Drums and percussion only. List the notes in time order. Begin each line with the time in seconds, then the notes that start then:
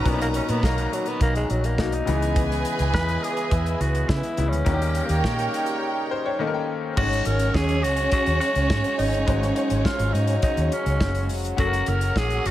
0.06 kick, closed hi-hat
0.21 closed hi-hat
0.34 closed hi-hat
0.49 closed hi-hat
0.63 kick, snare
0.78 closed hi-hat
0.93 closed hi-hat
1.06 closed hi-hat
1.21 kick, closed hi-hat
1.35 closed hi-hat
1.50 closed hi-hat
1.64 closed hi-hat
1.78 kick, snare
1.92 closed hi-hat
2.07 closed hi-hat
2.22 closed hi-hat
2.36 kick, closed hi-hat
2.51 snare, closed hi-hat
2.65 closed hi-hat
2.79 closed hi-hat
2.94 kick, snare
3.09 closed hi-hat
3.24 closed hi-hat
3.37 closed hi-hat
3.51 kick, closed hi-hat
3.66 closed hi-hat
3.81 closed hi-hat
3.95 closed hi-hat
4.09 kick, snare
4.23 closed hi-hat
4.37 closed hi-hat
4.53 closed hi-hat
4.66 kick, closed hi-hat
4.82 closed hi-hat
4.95 closed hi-hat
5.09 closed hi-hat
5.24 kick, snare
5.39 closed hi-hat
5.54 closed hi-hat
5.66 closed hi-hat
6.97 kick, crash
7.13 closed hi-hat
7.25 closed hi-hat
7.39 closed hi-hat
7.54 kick, snare
7.69 closed hi-hat
7.84 closed hi-hat
7.97 closed hi-hat
8.12 kick, closed hi-hat
8.26 closed hi-hat
8.41 closed hi-hat
8.55 closed hi-hat
8.70 kick, snare
8.84 closed hi-hat
8.99 open hi-hat
9.14 closed hi-hat
9.28 kick, closed hi-hat
9.43 snare, closed hi-hat
9.56 closed hi-hat
9.70 closed hi-hat
9.85 kick, snare
9.99 closed hi-hat
10.15 closed hi-hat
10.27 closed hi-hat
10.42 kick, closed hi-hat
10.57 closed hi-hat
10.72 closed hi-hat
10.86 closed hi-hat
11.01 kick, snare
11.15 closed hi-hat
11.29 open hi-hat
11.45 closed hi-hat
11.58 kick, closed hi-hat
11.73 snare, closed hi-hat
11.86 closed hi-hat
12.01 closed hi-hat
12.16 kick, snare
12.30 closed hi-hat
12.46 closed hi-hat